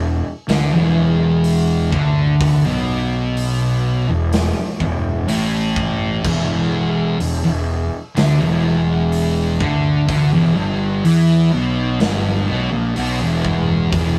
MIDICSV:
0, 0, Header, 1, 4, 480
1, 0, Start_track
1, 0, Key_signature, 1, "minor"
1, 0, Tempo, 960000
1, 1202, Time_signature, 4, 2, 24, 8
1, 7094, End_track
2, 0, Start_track
2, 0, Title_t, "Distorted electric guitar"
2, 0, Program_c, 0, 30
2, 0, Note_on_c, 0, 40, 77
2, 76, Note_off_c, 0, 40, 0
2, 244, Note_on_c, 0, 50, 108
2, 356, Note_off_c, 0, 50, 0
2, 366, Note_on_c, 0, 40, 99
2, 956, Note_off_c, 0, 40, 0
2, 961, Note_on_c, 0, 50, 118
2, 1314, Note_off_c, 0, 50, 0
2, 1326, Note_on_c, 0, 47, 115
2, 2036, Note_off_c, 0, 47, 0
2, 2041, Note_on_c, 0, 40, 69
2, 2233, Note_off_c, 0, 40, 0
2, 2404, Note_on_c, 0, 40, 72
2, 2594, Note_off_c, 0, 40, 0
2, 2639, Note_on_c, 0, 45, 103
2, 3113, Note_off_c, 0, 45, 0
2, 3121, Note_on_c, 0, 40, 105
2, 3594, Note_off_c, 0, 40, 0
2, 3605, Note_on_c, 0, 40, 74
2, 3717, Note_off_c, 0, 40, 0
2, 3723, Note_on_c, 0, 40, 77
2, 3914, Note_off_c, 0, 40, 0
2, 4087, Note_on_c, 0, 50, 107
2, 4197, Note_off_c, 0, 50, 0
2, 4203, Note_on_c, 0, 40, 98
2, 4795, Note_off_c, 0, 40, 0
2, 4802, Note_on_c, 0, 50, 104
2, 5035, Note_off_c, 0, 50, 0
2, 5042, Note_on_c, 0, 50, 114
2, 5155, Note_off_c, 0, 50, 0
2, 5167, Note_on_c, 0, 40, 99
2, 5277, Note_off_c, 0, 40, 0
2, 5284, Note_on_c, 0, 43, 119
2, 5516, Note_off_c, 0, 43, 0
2, 5527, Note_on_c, 0, 52, 114
2, 5757, Note_off_c, 0, 52, 0
2, 5767, Note_on_c, 0, 47, 120
2, 5998, Note_off_c, 0, 47, 0
2, 6005, Note_on_c, 0, 43, 100
2, 6237, Note_off_c, 0, 43, 0
2, 6247, Note_on_c, 0, 47, 111
2, 6358, Note_off_c, 0, 47, 0
2, 6363, Note_on_c, 0, 46, 108
2, 6476, Note_off_c, 0, 46, 0
2, 6484, Note_on_c, 0, 47, 110
2, 6596, Note_off_c, 0, 47, 0
2, 6602, Note_on_c, 0, 40, 103
2, 6955, Note_off_c, 0, 40, 0
2, 6964, Note_on_c, 0, 40, 118
2, 7094, Note_off_c, 0, 40, 0
2, 7094, End_track
3, 0, Start_track
3, 0, Title_t, "Fingered electric bass"
3, 0, Program_c, 1, 33
3, 0, Note_on_c, 1, 28, 93
3, 108, Note_off_c, 1, 28, 0
3, 243, Note_on_c, 1, 38, 99
3, 354, Note_off_c, 1, 38, 0
3, 364, Note_on_c, 1, 28, 97
3, 942, Note_off_c, 1, 28, 0
3, 961, Note_on_c, 1, 38, 95
3, 1301, Note_off_c, 1, 38, 0
3, 1324, Note_on_c, 1, 35, 101
3, 2022, Note_off_c, 1, 35, 0
3, 2044, Note_on_c, 1, 28, 97
3, 2266, Note_off_c, 1, 28, 0
3, 2404, Note_on_c, 1, 28, 77
3, 2626, Note_off_c, 1, 28, 0
3, 2640, Note_on_c, 1, 33, 86
3, 3101, Note_off_c, 1, 33, 0
3, 3123, Note_on_c, 1, 28, 94
3, 3582, Note_off_c, 1, 28, 0
3, 3604, Note_on_c, 1, 28, 93
3, 3714, Note_off_c, 1, 28, 0
3, 3730, Note_on_c, 1, 28, 88
3, 3949, Note_off_c, 1, 28, 0
3, 4086, Note_on_c, 1, 38, 100
3, 4195, Note_off_c, 1, 38, 0
3, 4203, Note_on_c, 1, 28, 95
3, 4783, Note_off_c, 1, 28, 0
3, 4803, Note_on_c, 1, 38, 86
3, 5026, Note_off_c, 1, 38, 0
3, 5044, Note_on_c, 1, 38, 102
3, 5155, Note_off_c, 1, 38, 0
3, 5162, Note_on_c, 1, 28, 91
3, 5274, Note_off_c, 1, 28, 0
3, 5284, Note_on_c, 1, 31, 95
3, 5506, Note_off_c, 1, 31, 0
3, 5522, Note_on_c, 1, 40, 101
3, 5746, Note_off_c, 1, 40, 0
3, 5763, Note_on_c, 1, 35, 92
3, 5986, Note_off_c, 1, 35, 0
3, 6006, Note_on_c, 1, 31, 109
3, 6227, Note_off_c, 1, 31, 0
3, 6245, Note_on_c, 1, 35, 107
3, 6355, Note_off_c, 1, 35, 0
3, 6366, Note_on_c, 1, 34, 89
3, 6476, Note_off_c, 1, 34, 0
3, 6486, Note_on_c, 1, 35, 100
3, 6596, Note_off_c, 1, 35, 0
3, 6608, Note_on_c, 1, 28, 106
3, 6945, Note_off_c, 1, 28, 0
3, 6963, Note_on_c, 1, 28, 90
3, 7094, Note_off_c, 1, 28, 0
3, 7094, End_track
4, 0, Start_track
4, 0, Title_t, "Drums"
4, 243, Note_on_c, 9, 46, 56
4, 250, Note_on_c, 9, 38, 113
4, 293, Note_off_c, 9, 46, 0
4, 300, Note_off_c, 9, 38, 0
4, 719, Note_on_c, 9, 46, 61
4, 769, Note_off_c, 9, 46, 0
4, 962, Note_on_c, 9, 36, 98
4, 1012, Note_off_c, 9, 36, 0
4, 1203, Note_on_c, 9, 36, 116
4, 1205, Note_on_c, 9, 46, 73
4, 1253, Note_off_c, 9, 36, 0
4, 1255, Note_off_c, 9, 46, 0
4, 1683, Note_on_c, 9, 46, 69
4, 1733, Note_off_c, 9, 46, 0
4, 2162, Note_on_c, 9, 46, 66
4, 2168, Note_on_c, 9, 38, 112
4, 2212, Note_off_c, 9, 46, 0
4, 2218, Note_off_c, 9, 38, 0
4, 2401, Note_on_c, 9, 36, 77
4, 2451, Note_off_c, 9, 36, 0
4, 2641, Note_on_c, 9, 46, 68
4, 2691, Note_off_c, 9, 46, 0
4, 2882, Note_on_c, 9, 36, 98
4, 2932, Note_off_c, 9, 36, 0
4, 3123, Note_on_c, 9, 36, 120
4, 3125, Note_on_c, 9, 49, 106
4, 3173, Note_off_c, 9, 36, 0
4, 3175, Note_off_c, 9, 49, 0
4, 3600, Note_on_c, 9, 46, 64
4, 3650, Note_off_c, 9, 46, 0
4, 4082, Note_on_c, 9, 46, 67
4, 4089, Note_on_c, 9, 38, 109
4, 4132, Note_off_c, 9, 46, 0
4, 4139, Note_off_c, 9, 38, 0
4, 4560, Note_on_c, 9, 46, 62
4, 4610, Note_off_c, 9, 46, 0
4, 4803, Note_on_c, 9, 36, 92
4, 4853, Note_off_c, 9, 36, 0
4, 5042, Note_on_c, 9, 46, 67
4, 5043, Note_on_c, 9, 36, 119
4, 5092, Note_off_c, 9, 46, 0
4, 5093, Note_off_c, 9, 36, 0
4, 5523, Note_on_c, 9, 46, 64
4, 5573, Note_off_c, 9, 46, 0
4, 6000, Note_on_c, 9, 46, 61
4, 6006, Note_on_c, 9, 38, 124
4, 6050, Note_off_c, 9, 46, 0
4, 6056, Note_off_c, 9, 38, 0
4, 6479, Note_on_c, 9, 46, 70
4, 6529, Note_off_c, 9, 46, 0
4, 6723, Note_on_c, 9, 36, 92
4, 6773, Note_off_c, 9, 36, 0
4, 6962, Note_on_c, 9, 46, 67
4, 6963, Note_on_c, 9, 36, 126
4, 7012, Note_off_c, 9, 46, 0
4, 7013, Note_off_c, 9, 36, 0
4, 7094, End_track
0, 0, End_of_file